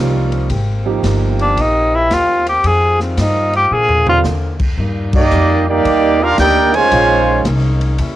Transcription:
0.00 0.48 C2 medium
0.00 0.46 F3 medium
0.00 0.49 G3 medium
0.00 0.46 A#3 medium
0.00 0.49 C4 medium
0.00 0.48 C#4 medium
0.00 0.46 D#4 medium
0.00 0.49 F4 medium
0.00 0.47 G4 medium
0.32 ride soft
0.49 1.02 G#1 medium
0.49 2.62 C3 medium
0.49 2.62 A#3 medium
0.49 4.61 C4 medium
0.49 2.62 G4 medium
0.49 kick soft
0.49 ride medium
0.86 1.54 F3 medium
0.86 1.53 A#3 medium
0.86 1.54 D#4 medium
0.86 1.54 G4 medium
1.03 1.55 G1 medium
1.03 kick soft
1.03 snare medium
1.03 hi-hat pedal medium
1.03 ride medium
1.39 1.62 D4 medium
1.39 ride soft
1.57 2.09 A#1 medium
1.57 1.97 D#4 medium
1.57 kick soft
1.57 ride medium
1.95 2.15 E4 loud
2.10 2.62 D#2 medium
2.10 2.48 F4 loud
2.10 kick soft
2.10 snare medium
2.10 hi-hat pedal medium
2.10 ride medium
2.47 2.69 G4 loud
2.47 ride medium
2.63 3.16 F2 medium
2.63 3.70 D#3 medium
2.63 3.70 G3 medium
2.63 4.61 F4 medium
2.63 3.01 G#4 loud
2.63 kick soft
2.63 ride medium
3.00 3.18 C4 medium
3.00 snare soft
3.17 3.69 G2 medium
3.17 3.55 D#4 medium
3.17 kick soft
3.17 snare medium
3.17 hi-hat pedal medium
3.17 ride medium
3.53 3.75 G4 loud
3.53 ride soft
3.70 4.23 A#2 medium
3.70 4.61 D3 medium
3.70 4.61 A#3 medium
3.70 4.08 G#4 loud
3.89 floor tom medium
4.07 4.23 D3 medium
4.07 4.24 G3 medium
4.07 4.24 C4 medium
4.07 4.24 F4 medium
4.07 4.19 F4 loud
4.07 floor tom medium
4.24 4.76 D3 medium
4.24 snare medium
4.24 hi-hat pedal medium
4.60 kick medium
4.60 crash medium
4.78 5.30 G2 medium
4.78 6.90 A#2 medium
4.78 6.90 G3 medium
4.78 6.90 A#3 medium
4.78 6.90 D#4 medium
4.78 kick soft
5.13 5.64 G3 medium
5.13 5.64 A#3 medium
5.13 5.64 D#4 medium
5.13 5.65 G4 medium
5.13 5.65 D5 medium
5.13 5.65 D#5 loud
5.13 kick loud
5.13 crash medium
5.31 5.83 F2 medium
5.31 hi-hat pedal medium
5.68 6.21 G3 medium
5.68 6.21 A#3 medium
5.68 6.21 D#4 medium
5.68 6.22 D#4 medium
5.68 6.21 G4 medium
5.68 6.21 D5 medium
5.85 6.37 D#2 medium
5.85 kick soft
5.85 ride medium
6.22 6.39 D4 medium
6.22 6.39 F4 medium
6.22 6.39 G4 medium
6.22 6.39 A#4 medium
6.22 6.40 F5 medium
6.38 6.90 D2 loud
6.38 6.71 A#3 medium
6.38 6.71 D4 medium
6.38 6.72 D#4 medium
6.38 6.72 G4 medium
6.38 6.72 A#4 medium
6.38 6.72 D5 medium
6.38 6.72 G5 loud
6.38 kick soft
6.38 snare medium
6.38 hi-hat pedal medium
6.38 ride medium
6.74 7.45 C#3 loud
6.74 7.45 F3 loud
6.74 7.45 G#3 loud
6.74 7.46 F4 loud
6.74 7.46 C5 loud
6.74 7.46 C#5 loud
6.74 7.46 G#5 loud
6.74 ride medium
6.91 7.43 A#1 medium
6.91 7.98 G#3 medium
6.91 7.97 A#3 medium
6.91 7.98 C#4 medium
6.91 7.97 D#4 medium
6.91 kick soft
6.91 ride medium
7.45 7.97 C2 medium
7.45 kick soft
7.45 snare medium
7.45 hi-hat pedal medium
7.45 ride medium
7.81 ride medium
7.98 8.16 D#2 loud
7.98 8.16 D#3 medium
7.98 8.16 G3 medium
7.98 8.16 C#4 medium
7.98 8.16 E4 loud
7.98 kick soft
7.98 ride medium

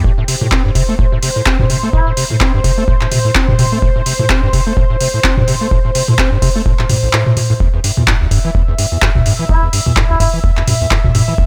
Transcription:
0.04 0.12 A2 medium
0.04 7.61 C5 medium
0.04 kick loud
0.18 0.23 A2 medium
0.28 0.35 C3 medium
0.28 open hi-hat loud
0.41 0.47 A2 medium
0.41 mid tom medium
0.52 0.63 C4 loud
0.52 kick loud
0.52 clap loud
0.65 0.71 G2 loud
0.75 0.83 C3 loud
0.75 kick medium
0.75 open hi-hat loud
0.89 0.94 A3 loud
0.99 1.06 A2 medium
0.99 kick loud
1.12 1.18 A2 medium
1.23 1.30 C3 medium
1.23 open hi-hat loud
1.36 1.42 A2 medium
1.46 1.57 C4 loud
1.46 kick loud
1.46 clap loud
1.59 1.65 G2 loud
1.59 kick medium
1.59 mid tom medium
1.70 1.77 C3 loud
1.70 open hi-hat medium
1.83 1.89 A3 loud
1.93 2.01 A2 medium
1.93 2.07 E4 medium
1.93 kick loud
2.07 2.12 A2 medium
2.17 2.24 C3 medium
2.17 open hi-hat medium
2.30 2.36 A2 medium
2.30 mid tom medium
2.41 2.52 C4 loud
2.41 kick loud
2.41 clap loud
2.54 2.60 G2 loud
2.64 2.72 C3 loud
2.64 kick medium
2.64 open hi-hat medium
2.78 2.83 A3 loud
2.88 2.95 A2 medium
2.88 kick loud
3.01 3.07 A2 medium
3.01 clap soft
3.12 3.19 C3 medium
3.12 open hi-hat medium
3.12 mid tom medium
3.25 3.31 A2 medium
3.35 3.46 C4 loud
3.35 kick loud
3.35 clap loud
3.48 3.54 G2 loud
3.48 kick medium
3.48 mid tom loud
3.59 3.66 C3 loud
3.59 open hi-hat medium
3.59 mid tom loud
3.72 3.78 A3 medium
3.82 3.90 A2 medium
3.82 kick loud
3.96 4.01 A2 medium
4.06 4.13 C3 medium
4.06 open hi-hat loud
4.19 4.25 A2 medium
4.19 mid tom medium
4.30 4.41 C4 loud
4.30 kick loud
4.30 clap loud
4.43 4.49 G2 loud
4.53 4.61 C3 loud
4.53 kick medium
4.53 open hi-hat medium
4.67 4.72 A3 loud
4.77 4.84 A2 medium
4.77 kick loud
4.90 4.96 A2 medium
5.01 5.08 C3 medium
5.01 open hi-hat loud
5.14 5.20 A2 medium
5.24 5.35 C4 loud
5.24 kick loud
5.24 clap loud
5.37 5.43 G2 loud
5.37 kick medium
5.37 mid tom loud
5.48 5.55 C3 loud
5.48 open hi-hat medium
5.61 5.67 A3 loud
5.71 5.79 A2 medium
5.71 kick loud
5.85 5.90 A2 medium
5.95 6.02 C3 medium
5.95 open hi-hat loud
6.08 6.14 A2 medium
6.08 mid tom medium
6.19 6.30 C4 loud
6.19 kick loud
6.19 clap loud
6.32 6.38 G2 loud
6.42 6.50 C3 loud
6.42 kick medium
6.42 open hi-hat medium
6.56 6.61 A3 loud
6.66 6.73 A2 medium
6.66 kick loud
6.79 6.85 A2 medium
6.79 clap soft
6.89 6.97 G2 medium
6.89 open hi-hat loud
6.89 mid tom loud
7.03 7.09 A1 medium
7.13 7.24 A2 loud
7.13 clap loud
7.26 7.35 A2 medium
7.26 mid tom loud
7.37 7.41 A2 medium
7.37 open hi-hat medium
7.37 mid tom loud
7.50 7.53 A2 loud
7.60 7.68 E2 medium
7.60 11.46 E5 medium
7.60 kick loud
7.74 7.79 E2 medium
7.84 7.91 G2 medium
7.84 open hi-hat loud
7.97 8.03 E2 medium
7.97 mid tom loud
8.08 8.15 G2 medium
8.08 kick loud
8.08 clap loud
8.21 8.27 D2 loud
8.31 8.39 G2 loud
8.31 kick medium
8.31 open hi-hat medium
8.45 8.50 E3 loud
8.55 8.62 E2 medium
8.55 kick loud
8.68 8.74 E2 medium
8.78 8.86 G2 medium
8.78 open hi-hat loud
8.92 8.97 E2 medium
9.02 9.09 G2 medium
9.02 kick loud
9.02 clap loud
9.15 9.21 D2 loud
9.15 kick medium
9.15 mid tom loud
9.26 9.33 G2 loud
9.26 open hi-hat medium
9.39 9.45 E3 loud
9.49 9.57 E2 medium
9.49 9.63 E4 medium
9.49 kick loud
9.63 9.68 E2 medium
9.73 9.80 G2 medium
9.73 open hi-hat loud
9.86 9.92 E2 medium
9.86 mid tom medium
9.97 10.04 G2 medium
9.97 kick loud
9.97 clap loud
10.10 10.16 D2 loud
10.10 10.17 E4 medium
10.20 10.28 G2 loud
10.20 10.29 E4 medium
10.20 kick medium
10.20 open hi-hat loud
10.34 10.39 E3 loud
10.44 10.51 E2 medium
10.44 kick loud
10.57 10.63 E2 medium
10.57 clap soft
10.67 10.75 G2 medium
10.67 open hi-hat loud
10.67 mid tom medium
10.81 10.86 E2 medium
10.91 10.98 G2 medium
10.91 kick loud
10.91 clap loud
11.04 11.10 D2 loud
11.04 kick medium
11.04 mid tom loud
11.15 11.22 G2 loud
11.15 open hi-hat loud
11.15 mid tom loud
11.28 11.34 E3 loud
11.38 11.46 E2 medium
11.38 kick loud

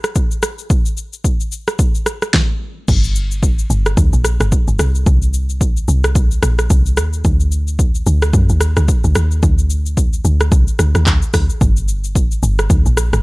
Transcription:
0.04 cross-stick medium
0.04 shaker soft
0.15 kick medium
0.15 shaker medium
0.31 shaker soft
0.43 cross-stick loud
0.43 shaker loud
0.59 shaker soft
0.70 kick loud
0.70 shaker medium
0.86 shaker medium
0.97 shaker medium
1.13 shaker medium
1.24 kick medium
1.24 shaker medium
1.40 shaker medium
1.52 shaker medium
1.68 cross-stick medium
1.68 shaker soft
1.79 kick loud
1.79 shaker medium
1.95 shaker soft
2.06 cross-stick medium
2.06 shaker loud
2.22 cross-stick medium
2.22 shaker soft
2.34 kick loud
2.34 snare medium
2.88 3.66 G1 loud
2.88 kick loud
2.88 crash loud
2.88 shaker medium
3.04 shaker medium
3.16 shaker medium
3.31 shaker medium
3.43 kick medium
3.43 shaker medium
3.59 shaker medium
3.70 3.96 G1 loud
3.70 shaker medium
3.86 cross-stick medium
3.86 shaker soft
3.97 4.12 D2 loud
3.97 kick loud
3.97 shaker medium
4.13 4.39 A#1 medium
4.13 shaker soft
4.25 cross-stick medium
4.25 shaker loud
4.40 4.51 G1 loud
4.40 cross-stick medium
4.40 shaker soft
4.52 kick loud
4.52 shaker medium
4.68 4.79 G1 medium
4.68 shaker soft
4.79 5.05 C2 loud
4.79 cross-stick loud
4.79 shaker loud
4.95 shaker medium
5.06 5.84 C2 loud
5.06 kick loud
5.06 shaker medium
5.22 shaker medium
5.34 shaker medium
5.50 shaker medium
5.61 kick medium
5.61 shaker medium
5.77 shaker medium
5.88 6.40 C2 loud
5.88 shaker medium
6.04 cross-stick medium
6.04 shaker soft
6.15 kick loud
6.15 shaker medium
6.31 shaker soft
6.43 6.69 A#1 medium
6.43 cross-stick loud
6.43 shaker loud
6.59 cross-stick medium
6.59 shaker soft
6.70 6.99 C2 loud
6.70 kick loud
6.70 shaker medium
6.86 shaker soft
6.97 7.23 D#2 loud
6.97 cross-stick loud
6.97 shaker loud
7.13 shaker soft
7.25 8.02 D2 loud
7.25 kick loud
7.25 shaker medium
7.40 shaker medium
7.52 shaker medium
7.68 shaker medium
7.79 kick loud
7.79 shaker medium
7.95 shaker medium
8.06 8.33 D2 loud
8.06 shaker medium
8.22 cross-stick loud
8.22 shaker soft
8.33 8.49 F#2 loud
8.33 kick loud
8.33 shaker medium
8.49 8.76 D#2 medium
8.49 shaker soft
8.61 cross-stick medium
8.61 shaker loud
8.77 8.88 D2 medium
8.77 cross-stick medium
8.77 shaker soft
8.88 kick loud
8.88 shaker medium
9.04 9.15 D2 loud
9.04 shaker medium
9.15 9.42 D#2 medium
9.15 cross-stick loud
9.15 shaker loud
9.31 shaker soft
9.43 10.21 D2 loud
9.43 kick loud
9.43 shaker medium
9.59 shaker medium
9.70 shaker medium
9.86 shaker medium
9.97 kick medium
9.97 shaker medium
10.13 shaker medium
10.25 10.51 D2 medium
10.25 shaker medium
10.40 cross-stick medium
10.40 shaker soft
10.52 10.67 C2 loud
10.52 kick loud
10.52 shaker medium
10.68 shaker soft
10.79 10.94 D2 loud
10.79 cross-stick medium
10.79 shaker loud
10.95 11.06 D#2 medium
10.95 cross-stick medium
10.95 shaker soft
11.06 11.22 D2 medium
11.06 kick loud
11.06 clap medium
11.06 shaker medium
11.22 shaker soft
11.34 11.49 D2 medium
11.34 kick loud
11.34 cross-stick loud
11.34 open hi-hat medium
11.34 shaker loud
11.50 shaker medium
11.61 12.39 G1 loud
11.61 kick loud
11.61 shaker medium
11.77 shaker medium
11.88 shaker medium
12.04 shaker medium
12.15 kick loud
12.15 shaker medium
12.32 shaker medium
12.43 12.69 G1 loud
12.43 shaker medium
12.59 cross-stick medium
12.59 shaker soft
12.70 12.85 D2 loud
12.70 kick loud
12.70 shaker medium
12.86 13.12 A#1 medium
12.86 shaker soft
12.97 cross-stick medium
12.97 shaker loud
13.13 13.23 G1 medium
13.13 cross-stick medium
13.13 shaker soft

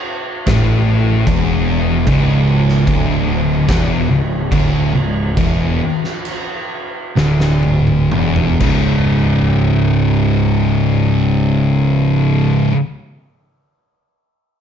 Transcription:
0.47 1.23 A1 loud
0.47 1.26 A2 loud
0.47 kick loud
0.47 snare loud
0.47 crash medium
1.27 2.03 E1 loud
1.27 2.06 E2 medium
1.27 kick loud
1.27 crash medium
2.07 2.84 C#1 medium
2.07 2.87 C#2 loud
2.07 kick loud
2.07 crash medium
2.69 snare soft
2.87 3.65 D1 loud
2.87 3.68 D2 loud
2.87 kick loud
2.87 crash medium
3.69 4.07 E1 loud
3.69 4.09 E2 loud
3.69 kick loud
3.69 snare loud
3.69 crash medium
4.10 4.49 C#1 medium
4.10 4.44 C#2 medium
4.52 4.91 D1 loud
4.52 4.93 D2 loud
4.52 kick loud
4.52 crash medium
4.95 5.35 C#1 loud
4.95 5.29 C#2 medium
5.37 5.78 E1 medium
5.37 5.80 E2 loud
5.37 kick loud
5.37 crash medium
6.04 snare soft
6.25 crash medium
7.17 8.08 D1 loud
7.17 8.11 D2 loud
7.17 snare medium
7.40 snare medium
7.63 high tom medium
7.87 high tom medium
8.12 8.58 E1 loud
8.12 8.60 E2 loud
8.12 mid tom loud
8.36 mid tom medium
8.60 12.67 C#1 loud
8.60 12.71 C#2 loud
8.60 12.73 G#2 loud
8.60 kick loud
8.60 crash medium
8.65 12.75 C#3 loud

